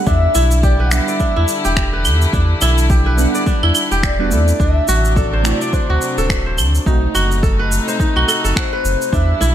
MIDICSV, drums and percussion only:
0, 0, Header, 1, 2, 480
1, 0, Start_track
1, 0, Key_signature, 1, "minor"
1, 0, Tempo, 566038
1, 61, Time_signature, 4, 2, 24, 8
1, 8096, End_track
2, 0, Start_track
2, 0, Title_t, "Drums"
2, 57, Note_on_c, 9, 36, 106
2, 57, Note_on_c, 9, 82, 31
2, 141, Note_off_c, 9, 36, 0
2, 142, Note_off_c, 9, 82, 0
2, 296, Note_on_c, 9, 82, 83
2, 380, Note_off_c, 9, 82, 0
2, 435, Note_on_c, 9, 82, 47
2, 520, Note_off_c, 9, 82, 0
2, 537, Note_on_c, 9, 36, 103
2, 538, Note_on_c, 9, 82, 34
2, 622, Note_off_c, 9, 36, 0
2, 623, Note_off_c, 9, 82, 0
2, 776, Note_on_c, 9, 26, 82
2, 776, Note_on_c, 9, 82, 79
2, 860, Note_off_c, 9, 26, 0
2, 861, Note_off_c, 9, 82, 0
2, 916, Note_on_c, 9, 82, 44
2, 1001, Note_off_c, 9, 82, 0
2, 1016, Note_on_c, 9, 82, 34
2, 1017, Note_on_c, 9, 36, 94
2, 1101, Note_off_c, 9, 82, 0
2, 1102, Note_off_c, 9, 36, 0
2, 1257, Note_on_c, 9, 82, 73
2, 1341, Note_off_c, 9, 82, 0
2, 1399, Note_on_c, 9, 82, 44
2, 1484, Note_off_c, 9, 82, 0
2, 1497, Note_on_c, 9, 36, 109
2, 1498, Note_on_c, 9, 26, 85
2, 1499, Note_on_c, 9, 82, 31
2, 1582, Note_off_c, 9, 36, 0
2, 1583, Note_off_c, 9, 26, 0
2, 1584, Note_off_c, 9, 82, 0
2, 1738, Note_on_c, 9, 75, 78
2, 1739, Note_on_c, 9, 82, 76
2, 1823, Note_off_c, 9, 75, 0
2, 1824, Note_off_c, 9, 82, 0
2, 1880, Note_on_c, 9, 82, 45
2, 1964, Note_off_c, 9, 82, 0
2, 1978, Note_on_c, 9, 36, 114
2, 1981, Note_on_c, 9, 82, 32
2, 2063, Note_off_c, 9, 36, 0
2, 2065, Note_off_c, 9, 82, 0
2, 2217, Note_on_c, 9, 75, 65
2, 2217, Note_on_c, 9, 82, 89
2, 2302, Note_off_c, 9, 75, 0
2, 2302, Note_off_c, 9, 82, 0
2, 2357, Note_on_c, 9, 82, 46
2, 2442, Note_off_c, 9, 82, 0
2, 2458, Note_on_c, 9, 36, 111
2, 2459, Note_on_c, 9, 82, 36
2, 2543, Note_off_c, 9, 36, 0
2, 2543, Note_off_c, 9, 82, 0
2, 2699, Note_on_c, 9, 82, 82
2, 2784, Note_off_c, 9, 82, 0
2, 2839, Note_on_c, 9, 82, 45
2, 2924, Note_off_c, 9, 82, 0
2, 2939, Note_on_c, 9, 36, 96
2, 2941, Note_on_c, 9, 82, 35
2, 3024, Note_off_c, 9, 36, 0
2, 3025, Note_off_c, 9, 82, 0
2, 3079, Note_on_c, 9, 75, 66
2, 3164, Note_off_c, 9, 75, 0
2, 3179, Note_on_c, 9, 75, 78
2, 3179, Note_on_c, 9, 82, 77
2, 3263, Note_off_c, 9, 75, 0
2, 3264, Note_off_c, 9, 82, 0
2, 3321, Note_on_c, 9, 82, 45
2, 3405, Note_off_c, 9, 82, 0
2, 3419, Note_on_c, 9, 36, 114
2, 3421, Note_on_c, 9, 26, 80
2, 3422, Note_on_c, 9, 82, 36
2, 3504, Note_off_c, 9, 36, 0
2, 3506, Note_off_c, 9, 26, 0
2, 3507, Note_off_c, 9, 82, 0
2, 3659, Note_on_c, 9, 82, 78
2, 3743, Note_off_c, 9, 82, 0
2, 3800, Note_on_c, 9, 82, 45
2, 3885, Note_off_c, 9, 82, 0
2, 3899, Note_on_c, 9, 36, 112
2, 3902, Note_on_c, 9, 82, 34
2, 3984, Note_off_c, 9, 36, 0
2, 3987, Note_off_c, 9, 82, 0
2, 4140, Note_on_c, 9, 82, 87
2, 4224, Note_off_c, 9, 82, 0
2, 4281, Note_on_c, 9, 82, 51
2, 4366, Note_off_c, 9, 82, 0
2, 4379, Note_on_c, 9, 36, 106
2, 4382, Note_on_c, 9, 82, 39
2, 4464, Note_off_c, 9, 36, 0
2, 4467, Note_off_c, 9, 82, 0
2, 4622, Note_on_c, 9, 26, 76
2, 4623, Note_on_c, 9, 82, 83
2, 4707, Note_off_c, 9, 26, 0
2, 4707, Note_off_c, 9, 82, 0
2, 4761, Note_on_c, 9, 82, 47
2, 4846, Note_off_c, 9, 82, 0
2, 4859, Note_on_c, 9, 36, 107
2, 4861, Note_on_c, 9, 82, 37
2, 4944, Note_off_c, 9, 36, 0
2, 4946, Note_off_c, 9, 82, 0
2, 5102, Note_on_c, 9, 82, 81
2, 5187, Note_off_c, 9, 82, 0
2, 5242, Note_on_c, 9, 82, 43
2, 5327, Note_off_c, 9, 82, 0
2, 5340, Note_on_c, 9, 36, 112
2, 5343, Note_on_c, 9, 26, 72
2, 5343, Note_on_c, 9, 82, 35
2, 5425, Note_off_c, 9, 36, 0
2, 5428, Note_off_c, 9, 26, 0
2, 5428, Note_off_c, 9, 82, 0
2, 5582, Note_on_c, 9, 75, 73
2, 5583, Note_on_c, 9, 82, 85
2, 5667, Note_off_c, 9, 75, 0
2, 5667, Note_off_c, 9, 82, 0
2, 5723, Note_on_c, 9, 82, 45
2, 5808, Note_off_c, 9, 82, 0
2, 5820, Note_on_c, 9, 36, 110
2, 5825, Note_on_c, 9, 82, 32
2, 5905, Note_off_c, 9, 36, 0
2, 5910, Note_off_c, 9, 82, 0
2, 6065, Note_on_c, 9, 75, 60
2, 6066, Note_on_c, 9, 82, 83
2, 6150, Note_off_c, 9, 75, 0
2, 6150, Note_off_c, 9, 82, 0
2, 6203, Note_on_c, 9, 82, 48
2, 6288, Note_off_c, 9, 82, 0
2, 6301, Note_on_c, 9, 36, 109
2, 6305, Note_on_c, 9, 82, 36
2, 6385, Note_off_c, 9, 36, 0
2, 6390, Note_off_c, 9, 82, 0
2, 6545, Note_on_c, 9, 82, 84
2, 6630, Note_off_c, 9, 82, 0
2, 6685, Note_on_c, 9, 82, 42
2, 6770, Note_off_c, 9, 82, 0
2, 6781, Note_on_c, 9, 36, 106
2, 6786, Note_on_c, 9, 82, 37
2, 6866, Note_off_c, 9, 36, 0
2, 6871, Note_off_c, 9, 82, 0
2, 6926, Note_on_c, 9, 75, 61
2, 7011, Note_off_c, 9, 75, 0
2, 7026, Note_on_c, 9, 75, 78
2, 7027, Note_on_c, 9, 82, 76
2, 7111, Note_off_c, 9, 75, 0
2, 7112, Note_off_c, 9, 82, 0
2, 7166, Note_on_c, 9, 82, 46
2, 7251, Note_off_c, 9, 82, 0
2, 7261, Note_on_c, 9, 36, 113
2, 7267, Note_on_c, 9, 26, 77
2, 7267, Note_on_c, 9, 82, 34
2, 7346, Note_off_c, 9, 36, 0
2, 7352, Note_off_c, 9, 26, 0
2, 7352, Note_off_c, 9, 82, 0
2, 7506, Note_on_c, 9, 82, 78
2, 7591, Note_off_c, 9, 82, 0
2, 7647, Note_on_c, 9, 82, 44
2, 7732, Note_off_c, 9, 82, 0
2, 7740, Note_on_c, 9, 36, 104
2, 7747, Note_on_c, 9, 82, 33
2, 7825, Note_off_c, 9, 36, 0
2, 7832, Note_off_c, 9, 82, 0
2, 7986, Note_on_c, 9, 82, 79
2, 8071, Note_off_c, 9, 82, 0
2, 8096, End_track
0, 0, End_of_file